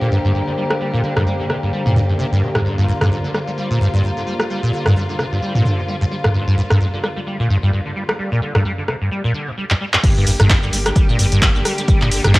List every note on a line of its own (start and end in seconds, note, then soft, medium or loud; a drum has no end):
0.00 0.10 A#2 loud
0.00 9.07 D3 medium
0.00 9.07 A#3 medium
0.00 2.64 G4 medium
0.00 9.11 G4 medium
0.00 9.11 C5 medium
0.00 9.11 F5 medium
0.00 9.11 A#5 medium
0.11 0.18 G2 loud
0.24 0.33 G2 loud
0.34 0.41 G2 medium
0.47 0.53 D3 medium
0.57 0.65 G3 medium
0.70 0.74 G3 medium
0.70 cross-stick medium
0.80 0.91 G3 medium
0.93 1.02 A#2 loud
1.04 1.14 D3 medium
1.17 1.25 G2 loud
1.17 cross-stick medium
1.17 mid tom medium
1.27 1.34 G3 medium
1.40 1.45 D3 medium
1.50 1.57 C3 medium
1.50 cross-stick medium
1.63 1.71 G2 medium
1.73 1.84 G3 medium
1.86 1.94 A#2 loud
1.86 mid tom medium
1.96 2.00 G2 loud
1.96 mid tom medium
2.09 2.14 G2 medium
2.19 2.26 C3 loud
2.32 2.44 G2 loud
2.42 2.49 C3 medium
2.55 2.61 G2 medium
2.55 cross-stick medium
2.55 mid tom medium
2.65 2.76 G2 medium
2.65 9.10 F4 medium
2.78 2.86 G2 loud
2.88 2.92 G2 medium
3.01 3.10 G2 loud
3.01 cross-stick medium
3.01 mid tom medium
3.24 3.30 D3 medium
3.34 3.39 G3 medium
3.34 cross-stick medium
3.47 3.51 G3 medium
3.57 3.68 G3 medium
3.70 3.79 A#2 loud
3.81 3.88 G2 loud
3.93 4.02 G2 loud
4.04 4.11 G2 medium
4.17 4.22 D3 medium
4.27 4.34 G3 medium
4.40 4.43 G3 medium
4.40 cross-stick medium
4.50 4.60 G3 medium
4.63 4.71 A#2 loud
4.73 4.84 D3 medium
4.86 4.94 G2 loud
4.86 cross-stick medium
4.86 mid tom medium
4.96 5.03 G3 medium
5.09 5.14 D3 medium
5.19 5.26 C3 medium
5.19 cross-stick medium
5.32 5.40 G2 medium
5.42 5.53 G3 medium
5.55 5.63 A#2 loud
5.55 mid tom medium
5.65 5.80 D3 medium
5.65 mid tom medium
5.78 5.81 A#2 medium
5.88 5.95 G3 medium
6.01 6.05 G2 loud
6.11 6.16 G3 medium
6.24 6.28 G2 medium
6.24 cross-stick medium
6.24 mid tom medium
6.34 6.45 G2 medium
6.47 6.56 G2 loud
6.57 6.62 G2 medium
6.70 6.79 G2 loud
6.70 cross-stick medium
6.70 mid tom medium
6.80 6.88 G2 medium
6.93 6.99 D3 medium
7.04 7.08 G3 medium
7.04 cross-stick medium
7.17 7.20 G3 medium
7.27 7.37 G3 medium
7.40 7.48 A#2 loud
7.50 7.57 G2 loud
7.63 7.71 G2 loud
7.73 7.80 G2 medium
7.86 7.91 D3 medium
7.96 8.03 G3 medium
8.09 8.12 G3 medium
8.09 cross-stick medium
8.19 8.30 G3 medium
8.32 8.40 A#2 loud
8.42 8.53 D3 medium
8.55 8.63 G2 loud
8.55 cross-stick medium
8.55 mid tom medium
8.65 8.72 G3 medium
8.78 8.84 D3 medium
8.88 8.95 C3 medium
8.88 cross-stick medium
9.01 9.10 G2 medium
9.11 9.22 G3 medium
9.24 9.33 A#2 loud
9.34 9.49 D3 medium
9.47 9.51 A#2 medium
9.57 9.65 G3 medium
9.70 9.74 G2 loud
9.70 clap medium
9.81 9.85 G3 medium
9.94 9.97 G2 medium
9.94 clap medium
10.04 10.35 G1 loud
10.04 10.14 G2 medium
10.04 12.39 D3 medium
10.04 12.39 A#3 medium
10.04 12.39 G4 medium
10.04 kick loud
10.04 closed hi-hat medium
10.04 crash loud
10.04 ride medium
10.04 shaker soft
10.17 10.25 G2 loud
10.17 shaker soft
10.27 10.31 G2 loud
10.27 open hi-hat loud
10.27 ride medium
10.27 shaker medium
10.40 10.69 G1 loud
10.40 10.48 G2 loud
10.40 cross-stick medium
10.40 closed hi-hat medium
10.40 mid tom medium
10.40 shaker soft
10.49 10.57 G2 medium
10.49 kick loud
10.49 snare loud
10.49 clap loud
10.49 closed hi-hat medium
10.49 ride medium
10.49 shaker soft
10.63 10.68 D3 medium
10.63 shaker soft
10.73 10.92 G1 loud
10.73 10.77 G3 medium
10.73 open hi-hat loud
10.73 ride medium
10.73 shaker medium
10.86 10.89 G3 medium
10.86 cross-stick medium
10.86 closed hi-hat medium
10.86 shaker soft
10.95 11.15 F1 medium
10.95 11.07 G3 medium
10.95 kick loud
10.95 closed hi-hat medium
10.95 ride medium
10.95 shaker soft
11.09 11.17 A#2 loud
11.09 ride soft
11.09 shaker soft
11.19 11.51 G1 medium
11.19 11.26 G2 loud
11.19 snare medium
11.19 open hi-hat loud
11.19 ride medium
11.19 shaker medium
11.32 11.40 G2 loud
11.32 closed hi-hat medium
11.32 shaker soft
11.42 11.49 G2 medium
11.42 kick loud
11.42 snare loud
11.42 clap loud
11.42 closed hi-hat medium
11.42 shaker soft
11.55 11.63 G1 medium
11.55 11.61 D3 medium
11.55 shaker soft
11.65 11.72 G3 medium
11.65 cross-stick medium
11.65 open hi-hat loud
11.65 ride medium
11.65 shaker medium
11.78 11.81 G3 medium
11.78 closed hi-hat medium
11.78 ride soft
11.78 shaker soft
11.88 12.20 G1 loud
11.88 11.99 G3 medium
11.88 kick loud
11.88 closed hi-hat medium
11.88 ride medium
11.88 shaker soft
12.01 12.10 A#2 loud
12.01 clap soft
12.01 shaker soft
12.11 12.22 D3 medium
12.11 open hi-hat loud
12.11 ride medium
12.11 shaker medium
12.24 12.39 G1 loud
12.24 12.33 G2 loud
12.24 cross-stick medium
12.24 closed hi-hat medium
12.24 mid tom medium
12.24 shaker soft
12.34 kick loud
12.34 snare loud
12.34 clap loud
12.34 closed hi-hat medium
12.34 ride medium
12.34 shaker soft